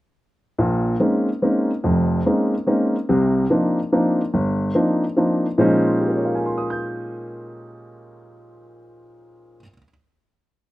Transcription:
grand piano
0.59 A#1 A#2
1.00 G#3 A#3 C4 C#4 D#4
1.42 G#3 A#3 C4 C#4 D#4
1.84 F1 F2
2.26 G#3 A#3 C4 C#4 D#4
2.67 G#3 A#3 C4 C#4 D#4
3.09 C2 C3
3.50 F3 A#3 C4 D4 D#4
3.92 F3 A#3 C4 D4 D#4
4.34 G1
4.75 F3 A#3 C4 D4 D#4
5.17 F3 A#3 C4 D4 D#4
5.58 A#2 F3 G#3 C#4 D#4 C5
6.00 G4
6.08 A#4
6.16 C#5
6.25 F5
6.35 G#5
6.46 C6
6.58 D#6
6.70 G6

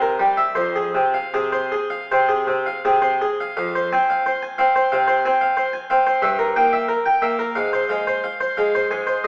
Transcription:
harpsichord
Already playing: C3
0.02 A#4
0.19 G3
0.37 E5
0.55 F2 C5
0.76 G#4
0.95 C3
1.14 F5
1.34 C3 G#4
1.52 C5
1.72 G#4
1.90 F5
2.11 C3 C5
2.29 G#4
2.47 C3
2.66 F5
2.85 C3 G#4
3.02 C5
3.22 G#4
3.40 F5
3.57 F2 F5
3.75 C5
3.92 C4 G#5
4.10 F5
4.26 C5
4.43 G#5
4.58 C4 F5
4.76 C5
4.92 C3 F5
5.08 C5
5.25 C4 G#5
5.41 F5
5.57 C5
5.73 G#5
5.90 C4 F5
6.07 C5
6.22 G2 E5
6.39 A#4
6.56 A#3 G5
6.73 E5
6.89 A#4
7.06 G5
7.22 A#3 E5
7.39 A#4
7.55 G#2 F5
7.73 C5
7.89 G#3 F5
8.07 C5
8.24 F5
8.41 C5
8.57 G#3 F5
8.75 C5
8.91 G#2 G#5
9.07 C5

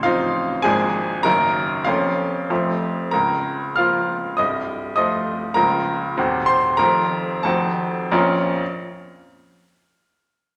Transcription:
grand piano
Already playing: A0 A1 C5 C6
0.03 F3 C4 D#4 F4 F5
0.62 G#1 G#2 F3 A#3 D4 G#4 G#5
1.23 F#1 F#2 D#3 A#3 D#4 A#4 A#5
1.85 F1 F2 F3 A#3 C#4 F4 F5
2.50 F1 F2 F3 A3 C4
3.11 C#1 C#2 A#4 A#5
3.76 F3 A#3 F4 F5 F6
4.37 C1 C2 D#5 D#6
4.96 F3 A3 F4 D#5 D#6
5.54 C#1 C#2 F3 A#3 F4 A#4 A#5
6.17 D#1 D#2 D#3 C4 F#4
6.46 C5 C6
6.77 F1 F2 D#3 C4 F4 A#4 A#5
7.43 F1 F2 D#3 C4 F#4 A4 A5
8.11 A#1 F2 F3 A#3 C#4 F4 A#5

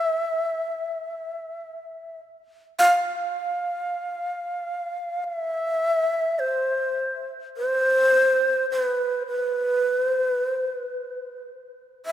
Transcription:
shakuhachi
Already playing: E5
2.79 F5
5.24 E5
6.39 C5
7.57 C5
8.72 B4
9.27 B4
10.07 C5
10.23 B4
10.51 C5
10.67 B4
12.06 E5

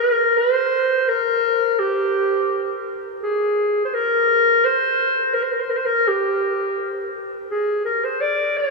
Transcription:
clarinet
Already playing: A#4
0.37 C5
1.08 A#4
1.79 G4
3.23 G#4
3.85 C5
3.94 A#4
4.64 C5
5.34 A#4
5.43 C5
5.52 A#4
5.60 C5
5.70 A#4
5.76 C5
5.85 A#4
6.08 G4
7.51 G#4
7.85 A#4
8.04 C5
8.21 D5
8.57 C5

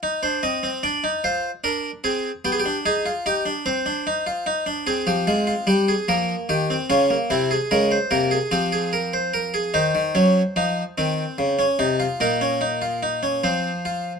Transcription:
harpsichord
0.03 D#4
0.23 D4 C5
0.43 C4 D#5
0.63 C4
0.83 D4 D5
1.04 D#4
1.24 F4 C5
1.64 D4 A#4
2.04 C4 G#4
2.45 B3 G4
2.52 G#4
2.60 G4
2.66 D4
2.86 D#4 G#4
3.06 F4
3.26 D#4 G4
3.46 D4
3.66 C4 C5
3.86 D4
4.07 D#4
4.27 F4
4.46 D#4
4.66 D4
4.87 C4 G#4
5.07 F3 G4
5.27 G#3 F4
5.47 F4
5.67 G3 G4
5.88 G#4
6.08 F3 A#3 A#4
6.49 D#3 G4
6.70 C4
6.90 C#3 C#4 F4
7.10 A#3
7.30 C3 C4 E4
7.51 G#4
7.71 C#3 G#3 A#4
7.91 C5
8.11 C3 A#3 A#4
8.31 G#4
8.51 F3 C4 G4
8.72 G#4
8.93 A#4
9.13 C5
9.34 A#4
9.54 G#4
9.74 D#3 D#4 C5
9.95 D#3
10.15 F#3 C#4
10.56 F3 D#4
10.98 D#3 C4
11.38 C#3
11.59 C#4
11.79 C3 D#4
12.00 F4
12.20 A#2 D#4 A#4
12.41 C#4
12.61 D#4
12.82 F4
13.03 D#4
13.23 C#4
13.44 F3 C4 C5
13.85 F4

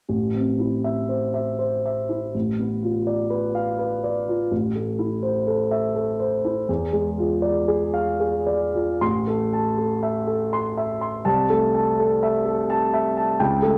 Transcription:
grand piano
0.08 A1
0.34 C4
0.59 E4
0.84 E5
1.09 C5
1.34 E5
1.59 C5
1.86 E5
2.09 E4
2.34 A1
2.59 B3
2.83 F4
3.07 D5
3.30 B4
3.55 F5
3.79 B4
4.04 D5
4.28 F4
4.51 A1
4.75 A3
4.99 E4
5.23 C5
5.47 A4
5.71 E5
5.96 A4
6.20 C5
6.45 E4
6.69 E2
6.93 G#3
7.18 F4
7.42 D5
7.68 G#4
7.94 F5
8.20 G#4
8.46 D5
8.74 F4
9.01 A1 C6
9.27 A3 A4
9.53 A5
9.78 A4
10.03 E5
10.27 A4
10.53 C6
10.77 E5
11.01 C6
11.25 C2 A5
11.50 A3 A4
11.75 A5
11.99 A4
12.23 E5
12.46 A4
12.70 A5
12.94 E5
13.17 A5
13.39 C#2 G5
13.62 A3 A4

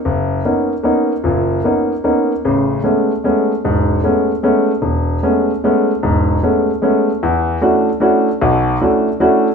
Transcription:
grand piano
0.05 F#1
0.45 A#3 B3 C#4 D#4
0.83 A#3 B3 C#4 D#4
1.24 F#1 A#2
1.64 A#3 B3 C#4 D#4
2.04 A#3 B3 C#4 D#4
2.45 A1 C#3
2.84 G#3 A3 B3 C#4
3.24 G#3 A3 B3 C#4
3.65 E1 G#2
4.04 G#3 A3 B3 C#4
4.43 G#3 A3 B3 C#4
4.82 E1
5.23 G#3 A3 B3 C#4
5.64 G#3 A3 B3 C#4
6.03 E1 G#2
6.43 G#3 A3 B3 C#4
6.82 G#3 A3 B3 C#4
7.23 E2
7.61 A3 C#4 D4 E4 F#4
8.00 A3 C#4 D4 E4 F#4
8.42 B1 B2
8.81 A3 C#4 D4 E4 F#4
9.20 A3 C#4 D4 E4 F#4

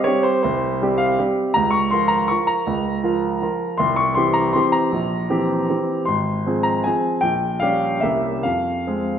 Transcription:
grand piano
0.04 G3 C4 G4 C#5
0.23 C5
0.43 C2 C5
0.82 G3 C4 G4
0.98 F5
1.19 G3 C4 G4
1.54 C#2 A#5
1.71 C#6
1.91 F3 F4 A#4 C6
2.08 A#5
2.28 F3 F4 A#4 C#6
2.47 A#5
2.67 C#2
3.04 F3 F4 A#4
3.42 F3 F4 A#4
3.77 C2 C6
3.96 C#6
4.15 E3 C4 G4 C6
4.34 A#5
4.53 E3 C4 G4 C6
4.72 A#5
4.92 A#1
5.30 E3 C4 G4
5.69 E3 C4 G4
6.05 G#1 C6
6.47 F3 C4 G#4
6.63 A#5
6.84 F3 C4 G#4 G#5
7.21 A#1 G5
7.60 G3 C#4 G4 F5
8.00 C2 A#3 C#4 G4 E5
8.43 F2 F5
8.87 G#3 C4 G#4

